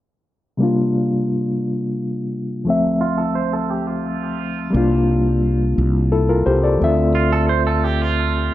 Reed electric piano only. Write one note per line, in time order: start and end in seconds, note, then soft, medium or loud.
0.57 2.61 C3 medium
0.57 2.62 G3 soft
0.57 2.63 A#3 soft
0.62 2.64 D4 soft
0.62 2.64 F4 medium
2.64 4.68 D2 medium
2.64 4.69 F3 soft
2.64 4.70 A3 soft
2.68 4.70 C4 medium
2.68 4.71 E5 medium
4.70 6.75 G3 medium
4.70 6.76 A#3 medium
4.75 6.77 D4 medium
4.75 6.10 F4 medium
6.12 6.28 E4 soft
6.12 6.28 A4 medium
6.29 6.46 F4 soft
6.29 6.45 A#4 medium
6.46 6.63 G4 soft
6.46 6.62 C5 medium
6.64 6.96 A4 soft
6.64 6.96 D5 soft
6.78 6.86 E3 soft
6.78 8.54 A3 medium
6.82 8.54 C4 medium
6.82 8.54 F4 medium
6.82 8.54 E5 medium